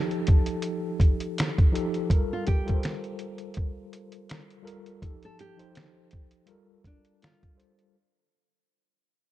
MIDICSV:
0, 0, Header, 1, 4, 480
1, 0, Start_track
1, 0, Key_signature, -2, "minor"
1, 0, Tempo, 731707
1, 1378, Time_signature, 4, 2, 24, 8
1, 6112, End_track
2, 0, Start_track
2, 0, Title_t, "Nylon-string guitar"
2, 0, Program_c, 0, 24
2, 0, Note_on_c, 0, 69, 83
2, 873, Note_off_c, 0, 69, 0
2, 1528, Note_on_c, 0, 65, 69
2, 1616, Note_off_c, 0, 65, 0
2, 1621, Note_on_c, 0, 67, 85
2, 2793, Note_off_c, 0, 67, 0
2, 3443, Note_on_c, 0, 69, 64
2, 3533, Note_off_c, 0, 69, 0
2, 3545, Note_on_c, 0, 67, 85
2, 4475, Note_off_c, 0, 67, 0
2, 4506, Note_on_c, 0, 62, 81
2, 4718, Note_off_c, 0, 62, 0
2, 4743, Note_on_c, 0, 65, 82
2, 4957, Note_off_c, 0, 65, 0
2, 6112, End_track
3, 0, Start_track
3, 0, Title_t, "Tine electric piano"
3, 0, Program_c, 1, 4
3, 0, Control_c, 1, 64, 127
3, 0, Note_on_c, 1, 53, 70
3, 0, Note_on_c, 1, 63, 66
3, 0, Note_on_c, 1, 67, 66
3, 0, Note_on_c, 1, 69, 82
3, 638, Note_off_c, 1, 53, 0
3, 642, Note_off_c, 1, 63, 0
3, 645, Note_off_c, 1, 67, 0
3, 648, Note_off_c, 1, 69, 0
3, 1130, Note_on_c, 1, 53, 85
3, 1135, Note_on_c, 1, 63, 69
3, 1142, Note_on_c, 1, 67, 70
3, 1146, Note_on_c, 1, 69, 87
3, 1345, Note_off_c, 1, 53, 0
3, 1347, Note_off_c, 1, 63, 0
3, 1351, Note_off_c, 1, 67, 0
3, 1352, Note_off_c, 1, 69, 0
3, 1379, Note_on_c, 1, 55, 73
3, 1384, Note_on_c, 1, 65, 68
3, 1385, Control_c, 1, 64, 0
3, 1390, Note_on_c, 1, 69, 69
3, 1397, Note_on_c, 1, 70, 90
3, 1490, Control_c, 1, 64, 127
3, 1697, Note_off_c, 1, 55, 0
3, 1699, Note_off_c, 1, 65, 0
3, 1702, Note_off_c, 1, 69, 0
3, 1706, Note_off_c, 1, 70, 0
3, 1740, Note_on_c, 1, 55, 70
3, 1746, Note_on_c, 1, 65, 68
3, 1751, Note_on_c, 1, 69, 70
3, 1756, Note_on_c, 1, 70, 64
3, 1792, Note_off_c, 1, 70, 0
3, 1797, Note_on_c, 1, 72, 81
3, 2559, Note_off_c, 1, 55, 0
3, 2562, Note_off_c, 1, 65, 0
3, 2565, Note_off_c, 1, 69, 0
3, 2587, Note_off_c, 1, 72, 0
3, 3032, Note_on_c, 1, 55, 74
3, 3037, Note_on_c, 1, 65, 71
3, 3045, Note_on_c, 1, 69, 74
3, 3049, Note_on_c, 1, 70, 96
3, 3256, Note_off_c, 1, 55, 0
3, 3258, Note_off_c, 1, 65, 0
3, 3262, Note_off_c, 1, 69, 0
3, 3264, Note_off_c, 1, 70, 0
3, 3295, Note_on_c, 1, 53, 74
3, 3300, Note_on_c, 1, 63, 74
3, 3306, Control_c, 1, 64, 0
3, 3307, Note_on_c, 1, 67, 68
3, 3313, Note_on_c, 1, 69, 83
3, 3429, Control_c, 1, 64, 127
3, 3615, Note_off_c, 1, 53, 0
3, 3617, Note_off_c, 1, 63, 0
3, 3621, Note_off_c, 1, 67, 0
3, 3624, Note_off_c, 1, 69, 0
3, 3652, Note_on_c, 1, 53, 70
3, 3657, Note_on_c, 1, 63, 66
3, 3665, Note_on_c, 1, 67, 58
3, 3669, Note_on_c, 1, 72, 86
3, 4239, Note_on_c, 1, 55, 91
3, 4245, Note_on_c, 1, 65, 79
3, 4247, Note_off_c, 1, 53, 0
3, 4250, Note_off_c, 1, 63, 0
3, 4251, Note_on_c, 1, 69, 82
3, 4254, Note_off_c, 1, 67, 0
3, 4255, Note_on_c, 1, 70, 92
3, 4256, Note_off_c, 1, 72, 0
3, 4267, Control_c, 1, 64, 0
3, 4380, Control_c, 1, 64, 127
3, 4880, Note_off_c, 1, 55, 0
3, 4883, Note_off_c, 1, 65, 0
3, 4886, Note_off_c, 1, 69, 0
3, 4888, Note_off_c, 1, 70, 0
3, 4952, Note_on_c, 1, 55, 68
3, 4959, Note_on_c, 1, 65, 60
3, 4964, Note_on_c, 1, 69, 59
3, 4971, Note_on_c, 1, 72, 81
3, 5175, Note_off_c, 1, 55, 0
3, 5179, Note_off_c, 1, 65, 0
3, 5181, Note_off_c, 1, 69, 0
3, 5185, Note_off_c, 1, 72, 0
3, 5225, Control_c, 1, 64, 0
3, 6112, End_track
4, 0, Start_track
4, 0, Title_t, "Drums"
4, 73, Note_on_c, 9, 42, 32
4, 138, Note_off_c, 9, 42, 0
4, 176, Note_on_c, 9, 42, 64
4, 185, Note_on_c, 9, 36, 92
4, 242, Note_off_c, 9, 42, 0
4, 251, Note_off_c, 9, 36, 0
4, 303, Note_on_c, 9, 42, 56
4, 369, Note_off_c, 9, 42, 0
4, 408, Note_on_c, 9, 42, 73
4, 474, Note_off_c, 9, 42, 0
4, 655, Note_on_c, 9, 36, 86
4, 662, Note_on_c, 9, 42, 60
4, 720, Note_off_c, 9, 36, 0
4, 728, Note_off_c, 9, 42, 0
4, 790, Note_on_c, 9, 42, 47
4, 855, Note_off_c, 9, 42, 0
4, 907, Note_on_c, 9, 42, 101
4, 918, Note_on_c, 9, 38, 108
4, 919, Note_on_c, 9, 26, 85
4, 972, Note_off_c, 9, 42, 0
4, 984, Note_off_c, 9, 26, 0
4, 984, Note_off_c, 9, 38, 0
4, 1039, Note_on_c, 9, 36, 99
4, 1040, Note_on_c, 9, 42, 34
4, 1105, Note_off_c, 9, 36, 0
4, 1106, Note_off_c, 9, 42, 0
4, 1151, Note_on_c, 9, 42, 69
4, 1216, Note_off_c, 9, 42, 0
4, 1274, Note_on_c, 9, 42, 38
4, 1339, Note_off_c, 9, 42, 0
4, 1378, Note_on_c, 9, 36, 119
4, 1383, Note_on_c, 9, 42, 95
4, 1443, Note_off_c, 9, 36, 0
4, 1449, Note_off_c, 9, 42, 0
4, 1618, Note_on_c, 9, 42, 68
4, 1627, Note_on_c, 9, 36, 99
4, 1683, Note_off_c, 9, 42, 0
4, 1692, Note_off_c, 9, 36, 0
4, 1756, Note_on_c, 9, 42, 43
4, 1767, Note_on_c, 9, 36, 90
4, 1822, Note_off_c, 9, 42, 0
4, 1832, Note_off_c, 9, 36, 0
4, 1858, Note_on_c, 9, 42, 88
4, 1870, Note_on_c, 9, 26, 90
4, 1870, Note_on_c, 9, 38, 110
4, 1923, Note_off_c, 9, 42, 0
4, 1935, Note_off_c, 9, 38, 0
4, 1936, Note_off_c, 9, 26, 0
4, 1993, Note_on_c, 9, 42, 34
4, 2059, Note_off_c, 9, 42, 0
4, 2092, Note_on_c, 9, 42, 69
4, 2158, Note_off_c, 9, 42, 0
4, 2219, Note_on_c, 9, 42, 51
4, 2284, Note_off_c, 9, 42, 0
4, 2323, Note_on_c, 9, 42, 70
4, 2343, Note_on_c, 9, 36, 101
4, 2388, Note_off_c, 9, 42, 0
4, 2408, Note_off_c, 9, 36, 0
4, 2578, Note_on_c, 9, 42, 66
4, 2643, Note_off_c, 9, 42, 0
4, 2703, Note_on_c, 9, 42, 47
4, 2768, Note_off_c, 9, 42, 0
4, 2817, Note_on_c, 9, 42, 94
4, 2828, Note_on_c, 9, 38, 112
4, 2829, Note_on_c, 9, 26, 92
4, 2883, Note_off_c, 9, 42, 0
4, 2894, Note_off_c, 9, 26, 0
4, 2894, Note_off_c, 9, 38, 0
4, 2954, Note_on_c, 9, 42, 36
4, 3020, Note_off_c, 9, 42, 0
4, 3065, Note_on_c, 9, 42, 74
4, 3131, Note_off_c, 9, 42, 0
4, 3189, Note_on_c, 9, 42, 38
4, 3255, Note_off_c, 9, 42, 0
4, 3294, Note_on_c, 9, 36, 115
4, 3297, Note_on_c, 9, 42, 88
4, 3360, Note_off_c, 9, 36, 0
4, 3363, Note_off_c, 9, 42, 0
4, 3428, Note_on_c, 9, 42, 35
4, 3494, Note_off_c, 9, 42, 0
4, 3537, Note_on_c, 9, 42, 78
4, 3602, Note_off_c, 9, 42, 0
4, 3670, Note_on_c, 9, 42, 44
4, 3735, Note_off_c, 9, 42, 0
4, 3774, Note_on_c, 9, 42, 88
4, 3786, Note_on_c, 9, 26, 98
4, 3786, Note_on_c, 9, 38, 113
4, 3840, Note_off_c, 9, 42, 0
4, 3852, Note_off_c, 9, 26, 0
4, 3852, Note_off_c, 9, 38, 0
4, 4007, Note_on_c, 9, 42, 65
4, 4022, Note_on_c, 9, 36, 91
4, 4073, Note_off_c, 9, 42, 0
4, 4087, Note_off_c, 9, 36, 0
4, 4139, Note_on_c, 9, 42, 54
4, 4205, Note_off_c, 9, 42, 0
4, 4243, Note_on_c, 9, 42, 72
4, 4309, Note_off_c, 9, 42, 0
4, 4490, Note_on_c, 9, 36, 92
4, 4497, Note_on_c, 9, 42, 64
4, 4555, Note_off_c, 9, 36, 0
4, 4562, Note_off_c, 9, 42, 0
4, 4623, Note_on_c, 9, 42, 46
4, 4689, Note_off_c, 9, 42, 0
4, 4739, Note_on_c, 9, 42, 88
4, 4750, Note_on_c, 9, 38, 113
4, 4751, Note_on_c, 9, 26, 83
4, 4804, Note_off_c, 9, 42, 0
4, 4816, Note_off_c, 9, 26, 0
4, 4816, Note_off_c, 9, 38, 0
4, 4874, Note_on_c, 9, 36, 92
4, 4874, Note_on_c, 9, 42, 35
4, 4940, Note_off_c, 9, 36, 0
4, 4940, Note_off_c, 9, 42, 0
4, 4983, Note_on_c, 9, 42, 66
4, 5049, Note_off_c, 9, 42, 0
4, 5109, Note_on_c, 9, 42, 37
4, 5174, Note_off_c, 9, 42, 0
4, 6112, End_track
0, 0, End_of_file